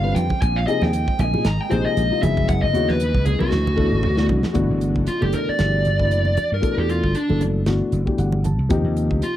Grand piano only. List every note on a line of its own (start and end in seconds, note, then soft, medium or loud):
0.02 0.23 D3 medium
0.02 0.23 G3 medium
0.02 0.23 C4 medium
0.02 0.24 F4 medium
0.02 0.24 B4 medium
0.30 0.36 F4 soft
0.30 0.36 A4 soft
0.67 0.88 C3 medium
0.67 0.89 F3 medium
0.67 0.89 A#3 medium
0.67 0.89 D#4 medium
0.67 0.89 G#4 loud
0.93 1.00 D#4 soft
0.93 1.01 G#4 soft
1.33 1.42 C3 medium
1.33 1.42 F3 medium
1.33 1.43 A#3 medium
1.33 1.42 D#4 medium
1.33 1.43 G#4 medium
1.44 1.52 D#4 soft
1.44 1.52 G#4 soft
1.69 2.01 C3 medium
1.69 2.01 F3 medium
1.69 2.01 A#3 medium
1.69 2.02 D#4 medium
1.69 2.02 G#4 loud
2.10 2.22 C3 medium
2.10 2.23 F3 medium
2.10 2.23 A#3 medium
2.10 2.23 D#4 medium
2.10 2.23 F4 medium
2.22 2.65 C#3 medium
2.22 2.65 F#3 medium
2.22 2.65 B3 medium
2.22 2.65 E4 medium
2.22 2.65 G#4 medium
2.73 2.95 C#3 medium
2.73 2.95 F#3 medium
2.73 2.95 B3 medium
2.73 2.95 E4 medium
2.73 2.96 F#4 medium
2.98 3.06 E4 soft
2.98 3.07 G#4 soft
3.38 3.49 C#3 medium
3.38 3.49 F#3 medium
3.38 3.49 B3 medium
3.38 3.49 E4 medium
3.38 3.49 A#4 medium
3.50 3.58 D4 soft
3.50 3.59 F#4 soft
3.76 4.08 B2 medium
3.76 4.08 E3 medium
3.76 4.08 A3 medium
3.76 4.08 D4 medium
3.76 4.09 A4 loud
4.16 4.37 B2 medium
4.16 4.37 E3 medium
4.16 4.37 A3 medium
4.16 4.37 D4 medium
4.16 4.37 F#4 medium
4.42 4.49 D4 soft
4.53 5.05 B2 loud
4.53 5.06 E3 medium
4.53 5.06 A3 medium
4.53 5.06 D4 medium
4.53 5.06 F#4 loud
5.20 5.51 B2 medium
5.20 5.51 E3 medium
5.20 5.51 A3 medium
5.20 5.52 D4 medium
5.20 5.52 A4 medium
5.57 5.89 B2 medium
5.57 5.90 E3 medium
5.57 5.90 A3 medium
5.57 5.90 D4 medium
5.57 5.90 G4 medium
5.98 6.29 B2 medium
5.98 6.29 E3 medium
5.98 6.29 A3 medium
5.98 6.29 D4 medium
5.98 6.29 E4 medium
6.36 6.44 D4 soft
6.36 6.44 F#4 soft
6.61 7.13 B2 medium
6.61 7.13 E3 medium
6.61 7.14 A3 medium
6.61 7.14 D4 medium
6.61 7.14 A4 medium
7.28 7.59 B2 medium
7.28 7.59 E3 medium
7.28 7.59 A3 medium
7.28 7.59 D4 medium
7.28 7.60 A4 medium
7.66 7.97 B2 medium
7.66 7.97 E3 medium
7.66 7.98 A3 medium
7.66 7.98 D4 medium
7.66 7.98 F#4 medium
8.05 8.36 B2 medium
8.05 8.36 E3 medium
8.05 8.37 A3 medium
8.05 8.37 D4 medium
8.05 8.37 G4 medium
8.18 8.43 F#5 medium
8.44 8.51 D4 soft
8.44 8.52 G4 soft
8.44 8.68 A5 medium
8.69 9.21 C3 loud
8.69 9.21 F3 medium
8.69 9.21 A#3 medium
8.69 9.21 D#4 loud
8.69 9.22 G4 loud